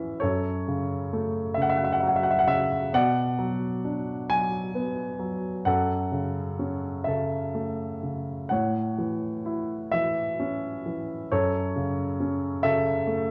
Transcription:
0.00 0.18 A2 soft
0.00 0.23 E3 soft
0.00 0.19 C#4 soft
0.00 0.18 E4 soft
0.00 0.23 E5 medium
0.20 2.90 F#2 medium
0.20 1.52 A4 soft
0.20 1.60 C#5 medium
0.68 1.56 C#3 soft
1.13 2.90 A3 soft
1.54 2.46 C#3 soft
1.54 1.63 E5 medium
1.62 1.71 F#5 medium
1.69 1.78 E5 medium
1.78 1.86 F#5 medium
1.84 1.93 E5 medium
1.93 2.01 F#5 medium
2.00 2.91 F#3 soft
2.00 2.09 E5 medium
2.08 2.17 F#5 medium
2.16 2.25 E5 medium
2.24 2.32 F#5 medium
2.31 2.40 E5 medium
2.39 2.48 F#5 medium
2.47 2.92 C#3 soft
2.47 2.90 E5 medium
2.93 5.62 B2 medium
2.93 4.27 D5 medium
2.93 3.81 F#5 medium
3.39 4.28 F#3 soft
3.85 5.63 D4 soft
4.29 5.18 F#3 soft
4.29 5.16 G#5 medium
4.75 5.64 B3 soft
5.19 5.65 F#3 soft
5.65 8.46 F#2 medium
5.65 7.04 A4 medium
5.65 7.11 F#5 medium
6.12 7.05 C#3 soft
6.59 8.47 C#4 soft
7.04 8.01 C#3 soft
7.04 8.47 A4 soft
7.04 8.45 E5 medium
7.54 8.48 A3 soft
8.03 8.49 C#3 soft
8.49 11.27 A2 soft
8.49 9.90 C#5 soft
8.49 9.41 F#5 medium
8.98 9.92 E3 soft
9.46 11.27 E4 soft
9.92 10.84 E3 soft
9.92 10.81 E5 medium
10.40 11.28 C#4 soft
10.86 11.30 E3 soft
11.31 13.31 F#2 medium
11.31 12.60 A4 medium
11.31 12.67 C#5 medium
11.76 12.63 C#3 soft
12.20 13.31 C#4 soft
12.63 13.31 C#3 soft
12.63 13.31 A4 medium
12.63 13.31 E5 medium
13.07 13.31 A3 soft

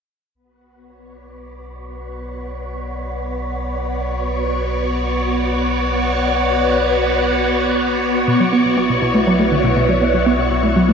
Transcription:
0.35 8.26 B1 medium
0.35 8.29 B3 medium
0.35 10.93 B3 medium
0.35 8.29 B4 medium
0.43 10.93 F#4 medium
0.75 10.93 C#5 medium
0.95 10.93 D5 medium
8.28 10.93 B1 medium
8.28 8.37 B2 medium
8.28 10.93 E4 medium
8.28 10.93 E5 medium
8.40 8.47 F#3 medium
8.53 8.59 B3 medium
8.65 8.69 F#3 medium
8.77 8.87 B3 medium
8.90 8.96 B2 medium
9.02 9.09 B2 medium
9.14 9.21 A3 medium
9.27 9.33 F#3 loud
9.39 9.49 A3 medium
9.52 9.56 D3 medium
9.64 9.74 B2 medium
9.77 9.86 B2 medium
9.89 9.95 F#3 medium
10.01 10.08 B3 medium
10.14 10.18 F#3 medium
10.26 10.36 B3 medium
10.39 10.45 B2 medium
10.51 10.57 B2 medium
10.63 10.70 A3 medium
10.76 10.82 F#3 medium
10.89 10.93 A3 medium

